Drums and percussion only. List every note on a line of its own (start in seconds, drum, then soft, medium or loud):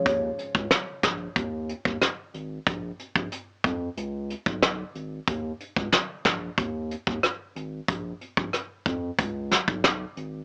0.06 kick loud
0.06 closed hi-hat medium
0.38 closed hi-hat soft
0.55 kick medium
0.71 cross-stick medium
0.71 snare loud
0.71 closed hi-hat medium
1.03 kick medium
1.03 cross-stick medium
1.03 snare loud
1.03 closed hi-hat medium
1.36 kick loud
1.36 closed hi-hat medium
1.69 closed hi-hat medium
1.85 kick medium
2.02 cross-stick medium
2.02 snare medium
2.02 closed hi-hat medium
2.34 closed hi-hat soft
2.67 kick loud
2.67 closed hi-hat medium
2.99 closed hi-hat soft
3.16 kick medium
3.32 closed hi-hat medium
3.64 kick medium
3.64 closed hi-hat soft
3.97 closed hi-hat medium
4.30 closed hi-hat soft
4.46 kick medium
4.62 cross-stick medium
4.62 snare loud
4.62 closed hi-hat medium
4.95 closed hi-hat soft
5.28 kick loud
5.28 closed hi-hat medium
5.60 closed hi-hat soft
5.76 kick loud
5.92 cross-stick medium
5.92 snare loud
5.92 closed hi-hat medium
6.25 kick medium
6.25 cross-stick medium
6.25 snare loud
6.25 closed hi-hat medium
6.58 kick loud
6.58 closed hi-hat medium
6.91 closed hi-hat medium
7.07 kick medium
7.23 cross-stick medium
7.23 closed hi-hat medium
7.56 closed hi-hat soft
7.88 kick loud
7.88 closed hi-hat medium
8.21 closed hi-hat soft
8.37 kick loud
8.53 cross-stick medium
8.53 closed hi-hat medium
8.86 kick medium
8.86 closed hi-hat soft
9.19 kick medium
9.19 closed hi-hat medium
9.51 snare medium
9.51 closed hi-hat medium
9.68 kick medium
9.84 cross-stick medium
9.84 snare loud
9.84 closed hi-hat medium
10.17 closed hi-hat soft